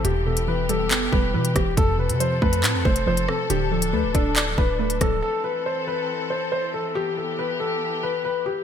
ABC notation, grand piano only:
X:1
M:4/4
L:1/8
Q:1/4=139
K:Am
V:1 name="Grand piano"
G A B A2 B B G | A B c B2 c c A | G A B A2 B B A | A B c B2 c c A |
G A B A2 B B G |]